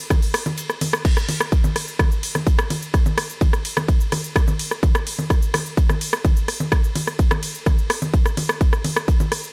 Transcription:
0.10 kick, cross-stick, ride, low conga, shaker
0.22 open hi-hat, shaker
0.34 cross-stick, open hi-hat, ride, shaker
0.46 low conga, shaker
0.58 ride, shaker
0.70 cross-stick, shaker
0.81 open hi-hat, ride, low conga, shaker
0.93 cross-stick, shaker
1.05 kick, crash, ride, shaker
1.17 cross-stick, shaker
1.29 open hi-hat, ride, low conga
1.41 cross-stick, shaker
1.52 kick, ride, shaker
1.64 low conga, shaker
1.76 cross-stick, open hi-hat, ride
1.88 shaker
1.99 kick, cross-stick, ride, low conga, shaker
2.11 shaker
2.23 open hi-hat, ride
2.35 cross-stick, low conga, shaker
2.47 kick, ride, shaker
2.59 cross-stick, shaker
2.70 open hi-hat, ride, low conga
2.82 shaker
2.94 kick, cross-stick, ride, shaker
3.06 low conga, shaker
3.18 cross-stick, open hi-hat, ride
3.30 shaker
3.41 kick, ride, low conga, shaker
3.53 cross-stick, shaker
3.65 open hi-hat, ride
3.77 cross-stick, low conga, shaker
3.88 kick, ride, shaker
4.00 shaker
4.12 cross-stick, open hi-hat, ride, low conga
4.24 shaker
4.36 kick, cross-stick, ride, shaker
4.48 low conga, shaker
4.59 open hi-hat, ride
4.71 cross-stick, shaker
4.83 kick, ride, low conga, shaker
4.95 cross-stick, shaker
5.07 open hi-hat, ride
5.19 low conga, shaker
5.30 kick, cross-stick, ride, shaker
5.42 shaker
5.54 cross-stick, open hi-hat, ride, low conga
5.66 shaker
5.77 kick, ride, shaker
5.89 cross-stick, low conga, shaker
6.01 open hi-hat, ride
6.13 cross-stick, shaker
6.25 kick, ride, low conga, shaker
6.37 shaker
6.48 cross-stick, open hi-hat, ride
6.60 low conga, shaker
6.72 kick, cross-stick, ride, shaker
6.84 shaker
6.95 open hi-hat, ride, low conga
7.07 cross-stick, shaker
7.19 kick, ride, shaker
7.31 cross-stick, low conga, shaker
7.43 open hi-hat, ride
7.55 shaker
7.66 kick, cross-stick, ride, low conga, shaker
7.78 shaker
7.90 cross-stick, open hi-hat, ride
8.02 low conga, shaker
8.14 kick, ride, shaker
8.26 cross-stick, shaker
8.37 open hi-hat, ride, low conga
8.49 cross-stick, shaker
8.61 kick, ride, shaker
8.73 cross-stick, shaker
8.84 open hi-hat, ride, low conga
8.96 cross-stick, shaker
9.08 kick, ride, shaker
9.20 low conga, shaker
9.32 cross-stick, open hi-hat, ride
9.44 shaker

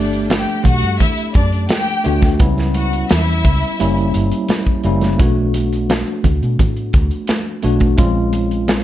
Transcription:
Already playing: G1 A3 B3 D4 G4 D5
0.13 closed hi-hat
0.30 G4 G5, snare, closed hi-hat, high conga
0.48 closed hi-hat
0.64 B1 F#4 F#5, kick, closed hi-hat, low conga
0.82 G2, closed hi-hat
1.00 E4 E5, kick, closed hi-hat, low conga
1.18 closed hi-hat
1.34 F#2 D4 D5, kick, closed hi-hat
1.52 closed hi-hat
1.69 G4 G5, snare, closed hi-hat, high conga
1.88 closed hi-hat
2.04 D2 A3 B3 D4 F#4, closed hi-hat
2.22 kick, snare, closed hi-hat, high conga
2.39 C#2 G3 B3 C#4 E4, kick, closed hi-hat, muted conga
2.58 snare, closed hi-hat
2.74 F#4 F#5, closed hi-hat, muted conga
2.93 closed hi-hat
3.10 E2 E4 E5, snare, closed hi-hat, high conga
3.45 C#2, kick, closed hi-hat
3.62 closed hi-hat
3.79 F#1 G3 A#3 C#4 E4, closed hi-hat
3.97 closed hi-hat
4.14 G1, closed hi-hat, muted conga
4.32 closed hi-hat
4.49 snare, closed hi-hat, high conga
4.67 kick
4.84 F#1 G3 A#3 C#4 E4, closed hi-hat
5.01 snare, closed hi-hat, high conga
5.18 B1 A3 B3 D4 F#4, kick, closed hi-hat, muted conga
5.54 closed hi-hat, muted conga
5.73 closed hi-hat
5.90 snare, closed hi-hat, high conga
6.08 closed hi-hat
6.24 D2, kick, closed hi-hat, low conga
6.42 B2, closed hi-hat
6.59 A2, kick, closed hi-hat, low conga
6.77 closed hi-hat
6.93 D2, kick, closed hi-hat, muted conga
7.11 closed hi-hat
7.27 snare, closed hi-hat, high conga
7.63 B1 A3 B3 D4 F#4, closed hi-hat
7.80 kick, closed hi-hat, high conga
7.97 A#1 G#3 C4 C#4 F4, kick, closed hi-hat, muted conga
8.33 closed hi-hat, muted conga
8.51 closed hi-hat
8.68 snare, closed hi-hat, high conga

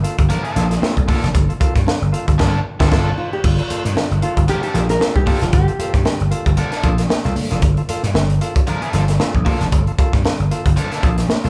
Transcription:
0.03 A#3 F4 A4, closed hi-hat
0.18 G1 F4 A4, kick, closed hi-hat
0.29 G2 D3 F3 A#3 D4 A#4, closed hi-hat, muted conga, low conga
0.44 F3 A#3 D4 A4, closed hi-hat
0.56 A#1 A#3 F4 A4, snare, closed hi-hat, muted conga, low conga
0.70 F4 A4, snare, closed hi-hat
0.81 F4 A4, muted slap bass stroke, snare, high conga
0.96 C2 G2 D3, kick, closed hi-hat
1.07 F3 A#3 D4 F4 A4, kick, open hi-hat, high conga
1.23 F1, snare, closed hi-hat
1.34 G1 G2 D3, kick, closed hi-hat, muted conga
1.49 F4 A4, closed hi-hat
1.60 A#3 F4 A4, muted slap bass stroke, kick, closed hi-hat
1.76 G2, kick, snare, closed hi-hat
1.87 G2 D3, snare, high conga
2.02 G1, closed hi-hat
2.12 A#3 F4 A4, closed hi-hat
2.28 G1 F4 A4, kick, closed hi-hat
2.38 G1 G2 D3 F3 A#3 D4 A4, kick, snare, crash
2.80 G1 F3 A#3 D4 F4 A4, kick, snare
2.91 G1 F3 A#3 D4 F4 A4, kick, snare, crash
3.18 F4
3.33 G4
3.44 G1 G2 D3 F4, kick, crash, muted conga
3.59 F4 A4, closed hi-hat
3.70 A#3 F4 A4, muted slap bass stroke, closed hi-hat
3.85 G2, snare, closed hi-hat
3.96 G2 D3, snare, high conga
4.11 G1, closed hi-hat
4.22 A#3 F4 A4, closed hi-hat
4.37 G1 F4 A4, kick, closed hi-hat
4.48 G2 D3 F3 A#3 D4 G4 A#4, closed hi-hat, low conga
4.62 F3 A#3 D4 G4 A4, closed hi-hat
4.74 A#1 A#3 F4 A4, snare, closed hi-hat, muted conga, low conga
4.89 F4 A4 A#4, snare, closed hi-hat
5.00 F4 A4, muted slap bass stroke, snare, high conga
5.15 C2 G2 D3 G4, kick
5.26 F3 A#3 D4 F4 A4, kick, open hi-hat, high conga
5.42 F1 F4, snare, closed hi-hat
5.53 G1 G2 D3 G4, kick, closed hi-hat, muted conga
5.68 F4 A4, closed hi-hat
5.79 A#3 F4 A4, muted slap bass stroke, closed hi-hat
5.94 G2, kick, snare, closed hi-hat
6.05 G2 D3, snare, high conga
6.20 G1, closed hi-hat
6.31 A#3 F4 A4, closed hi-hat
6.46 G1 F4 A4, kick, closed hi-hat
6.57 G2 D3 F3 A#3 D4 A4, closed hi-hat, muted conga
6.72 F3 A#3 D4 A4, snare, closed hi-hat
6.83 A#1 A#3 F4 A4, kick, closed hi-hat, muted conga
6.98 F4 A4, snare, closed hi-hat
7.09 muted slap bass stroke, snare, high conga
7.24 C2 A#3 F4 A4, snare, closed hi-hat
7.36 G2 D3, open hi-hat, high conga
7.50 F1 A#3 F4 A4, snare, closed hi-hat
7.62 G1 G2 D3, kick, closed hi-hat, muted conga
7.77 F4 A4, closed hi-hat
7.89 A#3 F4 A4, muted slap bass stroke, closed hi-hat
8.03 G2, snare, closed hi-hat
8.14 G1 G2 D3, snare, high conga
8.30 closed hi-hat
8.41 A#3 F4 A4, closed hi-hat
8.56 F4 A4, kick, closed hi-hat
8.67 G2 D3 F3 A#3 D4 A#4, closed hi-hat, low conga
8.82 F3 A#3 D4 A4, closed hi-hat
8.93 G1 A#3 F4 A4, snare, closed hi-hat, muted conga, low conga
9.08 F4 A4, snare, closed hi-hat
9.20 F4 A4, muted slap bass stroke, snare, high conga
9.35 A#1 G2 D3, kick
9.45 F3 A#3 D4 F4 A4, kick, open hi-hat, high conga
9.61 F1, snare, closed hi-hat
9.72 G1 G2 D3, kick, closed hi-hat, muted conga
9.87 F4 A4, closed hi-hat
9.99 A#3 F4 A4, muted slap bass stroke, kick, closed hi-hat
10.13 G2, kick, snare, closed hi-hat
10.25 G2 D3, snare, high conga
10.39 G1, closed hi-hat
10.51 A#3 F4 A4, closed hi-hat
10.66 G1 F4 A4, kick, closed hi-hat
10.76 G2 D3 F3 A#3 D4 A4, closed hi-hat, muted conga
10.91 F3 A#3 D4 A4, snare, closed hi-hat
11.03 A#1 A#3 F4 A4, kick, closed hi-hat, muted conga
11.18 F4 A4, snare, closed hi-hat
11.29 muted slap bass stroke, snare, high conga
11.44 C2 A#3 F4 A4, snare, closed hi-hat

